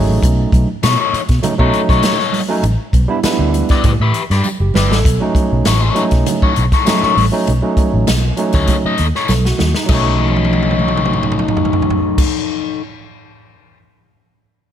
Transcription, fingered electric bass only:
0.09 A1
0.22 B1
0.53 B1
0.84 B2
1.13 muted fingered electric bass stroke
1.29 B2
1.43 muted fingered electric bass stroke
1.59 B2
1.89 B1
2.63 A1
2.93 B1
3.24 muted fingered electric bass stroke
3.39 D2
3.85 A2
4.00 A2
4.30 G2
4.60 F#1
4.75 G1
4.91 A1
5.06 B1
5.52 B1
5.66 A1
6.12 B1
6.43 muted fingered electric bass stroke
6.58 B1
7.03 muted fingered electric bass stroke
7.17 A1
7.48 B1
7.94 A1
8.09 B1
8.54 D2
8.85 muted fingered electric bass stroke
8.99 D#2
9.29 B1
9.60 D#2
9.89 B1

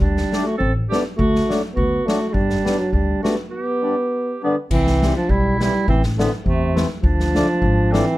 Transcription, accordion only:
0.32 G3 A3 D4
0.90 G3 A3 D4
1.49 F#3 A3 D4
2.07 F#3 A3 D4
2.64 G3 B3 D4
3.24 G3 B3 D4
3.82 G3 B3 D4
4.43 G3 B3 D4
5.02 E3 G3 C4
5.61 E3 G3 C4
6.18 E3 A3 C4
6.74 E3 A3 C4
7.34 F3 A3 D4
7.91 F3 A3 D4

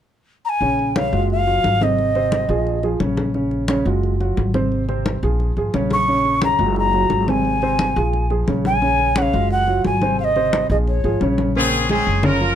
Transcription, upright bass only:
0.61 A#1
1.13 F#1
1.64 G#1
2.49 A#1
3.00 A#1
3.85 F#1
4.37 G#1
5.23 A#1
5.57 G#1
5.74 A#1
6.59 F#1
7.10 G#1
7.96 A#1
8.48 A#1
9.34 F#1
9.85 G#1
10.70 A#1
11.04 G#1
11.21 A#1
12.07 F#1

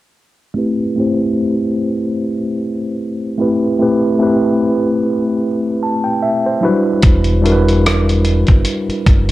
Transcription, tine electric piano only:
0.54 A3 C4 E4 G4
0.58 B4
0.96 A3 C4 E4 G4 C5
3.37 A3 C4 E4 G4 B4
3.79 A3 C4 E4 G4 B4
4.19 A3 C4 E4 G4 B4
5.83 A5
6.04 G5
6.23 E5
6.46 C5
6.61 F#3 D4 E4 F#4
6.65 G3 B4
7.42 G3 D4 E4 F#4
7.46 A#4
7.52 B4

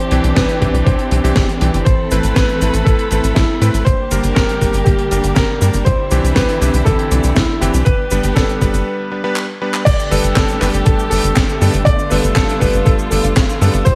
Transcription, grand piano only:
Already playing: C5
0.35 B4
0.85 C5
1.85 C5
2.35 B4
2.85 A4
3.35 E4
3.85 C5
4.35 A#4
4.85 G4
5.35 A#4
5.85 C5
6.35 B4
6.85 A4
7.35 E4
7.85 B4
8.35 A4
9.85 D5
10.10 B4
10.35 A4
10.60 B4
10.85 A4
11.10 A4
11.85 D5
12.10 B4
12.35 A4
12.60 B4
12.85 A4
13.10 A4
13.85 C5

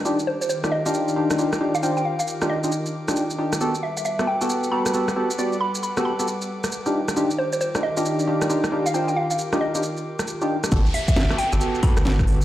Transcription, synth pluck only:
0.27 C5
0.41 C5
0.49 C5
0.72 D#5
0.86 D#5
1.75 F5
1.83 G5
1.97 G5
2.05 F5
2.19 F5
2.50 D#5
3.83 E5
3.97 E5
4.05 E5
4.27 G5
4.41 G5
4.72 B5
5.61 B5
5.83 B5
6.05 B5
7.38 C5
7.53 C5
7.61 C5
7.83 D#5
7.97 D#5
8.86 F5
8.94 G5
9.08 G5
9.16 F5
9.31 F5
9.61 D#5
10.94 E5
11.08 E5
11.16 E5
11.38 G5
11.53 G5
11.83 B5

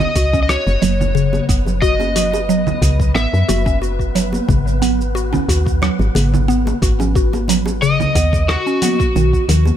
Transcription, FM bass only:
0.16 C#2
0.67 F#1
0.83 F#1
1.49 F#1
2.82 C#2
3.15 A1
3.33 F#2
3.49 F#1
4.49 G#1
5.48 D#2
5.99 G#1
6.16 G#1
6.82 G#1
8.15 D#2
9.16 B1
9.49 D#2

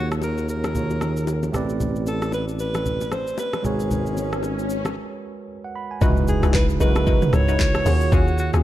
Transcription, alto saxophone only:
0.24 A#4
0.50 A#4
2.08 A4
2.34 B4
2.61 B4
3.13 C5
3.39 B4
3.66 G#4
6.29 G#4
6.55 B4
6.81 B4
7.34 C#5
8.13 F#4
8.40 F#4

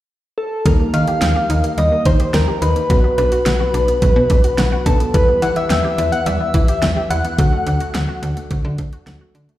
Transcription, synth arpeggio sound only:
0.66 G3
0.80 A#3
0.94 D#4
1.08 G4
1.22 G5
1.36 G4
1.50 D#4
1.64 A#3
1.78 G3
1.92 A#3
2.06 D#4
2.20 G4
2.34 G5
2.48 G4
2.62 D#4
2.76 A#3
2.90 F#3
3.04 B3
3.18 D4
3.32 F#4
3.46 F#5
3.60 F#4
3.74 D4
3.88 B3
4.02 F#3
4.16 B3
4.30 D4
4.44 F#4
4.58 F#5
4.72 F#4
4.86 D4
5.00 B3
5.14 G3
5.28 B3
5.42 E4
5.56 G4
5.70 G5
5.84 G4
5.98 E4
6.12 B3
6.26 G3
6.40 B3
6.54 E4
6.68 G4
6.83 G5
6.97 G4
7.11 E4
7.25 B3
7.39 F#3
7.53 A3
7.67 D4
7.81 F#4
7.95 F#5
8.09 F#4
8.23 D4
8.37 A3
8.51 F#3
8.65 A3
8.79 D4
8.93 F#4
9.07 F#5
9.21 F#4
9.35 D4
9.49 A3

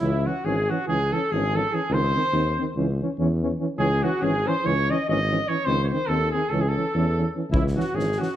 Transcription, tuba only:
0.01 C#2
0.44 G#1
0.88 C#2
1.31 G#1
1.90 C#2
2.32 D#2
2.76 C#2
3.19 E2
3.79 C#2
4.21 G#1
4.66 C#2
5.08 G#1
5.67 C#2
6.09 D#2
6.51 C#2
6.94 E2
7.51 C#2
7.93 G#1

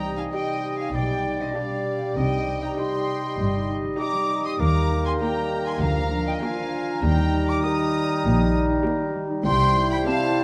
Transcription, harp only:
Already playing: C3 G3
0.02 C4
0.17 D#4
0.32 G4
0.47 C5
0.63 D#5
0.78 G5
0.93 B2
1.09 B3
1.24 G3
1.40 D4
1.55 G4
1.70 D4
1.86 D5
2.01 G5
2.17 C3
2.32 C4
2.47 G3
2.63 D#4
2.78 G4
2.92 D#4
3.08 D#5
3.23 G5
3.39 D#5
3.54 G4
3.69 D#4
3.84 G3
3.99 C4
4.14 G3
4.30 C4
4.45 G3
4.60 D#3
4.76 G3
4.91 D#4
5.05 G4
5.21 D#4
5.36 D#5
5.51 G5
5.66 D#5
5.81 D3
5.97 D4
6.12 F3
6.27 F4
6.43 A#4
6.58 F4
6.73 F5
6.88 A#5
7.03 D#3
7.18 G3
7.33 D#4
7.48 A#4
7.64 G4
7.94 A#5
8.10 G5
8.24 A#5
8.40 D#5
8.54 G4
8.69 D#4
8.85 G3
9.00 D#4
9.15 G3
9.30 D#4
9.45 C3
9.61 C4
9.76 G3
9.91 E4
10.06 C5
10.21 G4
10.36 E5

